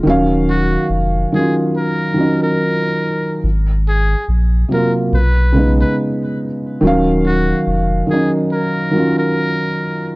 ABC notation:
X:1
M:4/4
L:1/16
Q:"Swing 16ths" 1/4=71
K:Ebm
V:1 name="Muted trumpet"
z2 G2 z2 A z B3 B4- B | z2 A2 z2 B z =B3 B z4 | z2 G2 z2 A z B3 B4- B |]
V:2 name="Felt piano"
[E,G,Df]4 z2 [E,G,DF]2 z2 [E,G,DE]6 | z6 [=C,G,B,F]2 z2 [^C,^G,=B,^D]4 z2 | [E,G,Df]4 z2 [E,G,DE]2 z2 [E,G,DF]6 |]
V:3 name="Sub bass" clef=bass
E,,,4 F,,,2 z8 z2 | A,,,4 B,,,2 z2 =B,,,4 z4 | E,,,4 F,,,2 z8 z2 |]